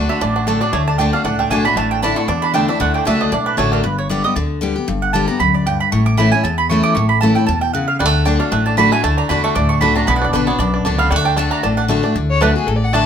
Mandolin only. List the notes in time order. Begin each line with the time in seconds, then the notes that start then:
0.09 E5
0.21 D5
0.36 F#4
0.47 A4
0.61 D5
0.73 C#5
0.87 A5
0.98 G5
1.13 F5
1.24 F#5
1.39 G5
1.51 G#5
1.65 B5
1.77 A5
1.91 G5
2.03 B5
2.16 C#6
2.28 D6
2.42 B5
2.54 G5
2.69 E5
2.81 F#5
2.94 G5
3.07 E5
3.21 D#5
3.33 D5
3.46 B4
3.58 C#5
3.73 A#4
3.84 B4
3.98 C#5
4.10 D5
4.24 D#5
4.36 D5
5.02 F#5
5.13 A5
5.28 A#5
5.40 B5
5.54 D5
5.66 G5
5.80 B5
5.92 C#6
6.06 D6
6.18 B5
6.32 G#5
6.44 A5
6.58 B5
6.70 C#6
6.83 D6
6.95 C#6
7.09 B5
7.21 A5
7.35 G5
7.46 A5
7.61 G5
7.73 F#5
7.88 F5
7.99 F#5
8.25 G5
8.40 F5
8.51 F#5
8.66 A5
8.78 B5
8.92 G#5
9.04 A5
9.18 A#5
9.29 B5
9.44 C#6
9.55 D6
9.69 C#6
9.81 B5
9.96 A#5
10.07 B5
10.16 F#5
10.24 D5
10.33 B4
10.47 C#5
10.59 D5
10.99 F5
11.11 F#5
11.25 G5
11.38 A5
11.51 A#5
11.63 A5
11.77 F#5
12.41 A3 F#4 D5 F#5
12.93 A3 F#4 D5 F#5